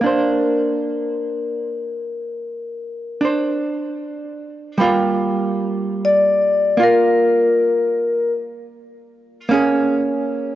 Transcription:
Already playing: A#4
0.01 A#3 D4
0.06 C5
3.21 D4 C5
4.78 G3 A#3 F4
6.05 D5
6.77 A#3 F4
6.83 A#4
9.49 A#3 C#4 G#4

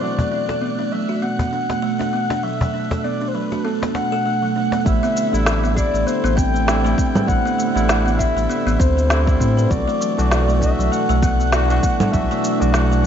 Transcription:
Already playing: A3 A4 F#6
0.00 B2 E3 F#3 A3 D4 F#4 D5
0.19 F#3, cajon bass
0.32 D4
0.49 A4, cajon slap
0.61 B3
0.79 D4
0.92 F#3 E5
1.08 D4 F#4
1.22 B3 F#5
1.39 B3, cajon bass
1.52 D4 F#5
1.69 B3, cajon slap
1.82 A3
1.99 D4, cajon slap
2.13 B3
2.30 D4, cajon slap
2.38 F#5
2.43 F#3 E5
2.61 F#3, cajon bass
2.74 D4
2.91 A4, cajon bass, cajon slap
3.04 B3 D5
3.22 D4
3.28 C5
3.34 F#3 B4
3.52 F#4, cajon slap
3.64 B3 A4
3.82 B3, cajon slap
3.95 A3 F#5, cajon slap
4.12 A4
4.26 A3
4.43 F#3
4.56 D4
4.72 B3, cajon slap
4.84 A1 A2 D3 G3 A3 C4 E4 E5, kick, cabasa
5.03 B3, cabasa
5.16 A3, cabasa
5.32 A1 D3 G3 A3 E4, cabasa
5.46 A4, snare, cabasa
5.64 B3, cabasa
5.74 D3 G3 E4 D5, kick, cabasa
5.94 A1 A3, cabasa
6.06 B3 C5, cabasa
6.24 A1 B3, cabasa
6.36 C4 G5, kick, cabasa
6.54 A3, cabasa
6.67 D3 G3 C4 E4 A4, snare, cabasa
6.84 D3 G3 A3 E4, cabasa
6.98 C4, kick, cabasa
7.15 B4, low conga, cabasa
7.27 A1 D3 G3 A3 C4 E4 F#5, kick, cabasa
7.45 B3, cabasa
7.58 A3, cabasa
7.75 A1 D3 G3 A3 E4, cabasa
7.89 A4, snare, cabasa
8.06 B3, cabasa
8.17 D3 G3 E4 E5, kick, cabasa
8.36 A1 A3, cabasa
8.50 B3, cabasa
8.66 A1 B3, cabasa
8.79 D2 C4 C5, kick, cabasa
8.97 A3, cabasa
9.08 D3 G3 C4 E4 A4, snare, cabasa
9.26 D3 G3 A3 E4, kick, cabasa
9.40 A2 C4, kick, cabasa
9.57 B4, cabasa
9.70 B1 B2 E3 F#3 A3 D4 F#4 D5, kick, cabasa
9.88 A3, cabasa
10.01 F#3, cabasa
10.17 B1 E3 F#3 A3 D4 F#4, cabasa
10.23 D4
10.31 F#4, snare, cabasa
10.49 A3, cabasa
10.59 E3 A3 D4 E5, kick, cabasa
10.64 F#4
10.79 B1 F#3, cabasa
10.91 A3 F#5, cabasa
11.09 B1 A3, cabasa
11.21 B3 F#5, kick, cabasa
11.40 F#3, cabasa
11.52 E3 A3 D4 F#4, snare, cabasa
11.69 E3 F#3 A3 D4 F#4, cabasa
11.83 B3, kick, cabasa
12.00 A4, low conga, cabasa
12.07 F#5
12.12 B1 E3 F#3 A3 D4 F#4 E5, kick, cabasa
12.31 A3, cabasa
12.44 F#3, cabasa
12.60 B1 E3 F#3 A3 D4 F#4 D5, cabasa
12.72 F#4 F#5, snare, cabasa
12.92 A3, cabasa
13.02 E3

